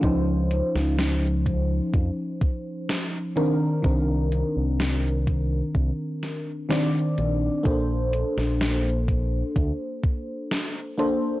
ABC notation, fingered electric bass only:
X:1
M:4/4
L:1/16
Q:1/4=63
K:Bb
V:1 name="Fingered electric bass" clef=bass
_D,,2 z D,,4 z F,, z6 z | C,,2 z C,,4 z C,, z4 z B,,, z | B,,,2 z B,,,4 z D,, z6 z |]